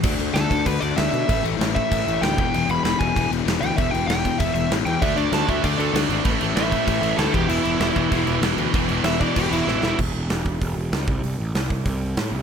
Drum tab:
CC |xxxxxxxx|xxxxxxxx|xxxxxxxx|xxxxxxxx|
HH |--------|--------|--------|--------|
SD |--o---o-|--o---o-|--o---o-|--o---o-|
BD |o--oo---|o--oo--o|---oo---|o--oo---|

CC |xxxxxxxx|xxxxxxxx|xxxxxxxx|xxxxxx--|
HH |--------|--------|--------|--------|
SD |--o---o-|--o---o-|--o---o-|--o---oo|
BD |o--oo---|o--oo--o|---oo---|o--oo---|

CC |x-------|--------|
HH |--o-o-o-|o-o-o-o-|
SD |--o---o-|--o---o-|
BD |o--oo--o|---oo---|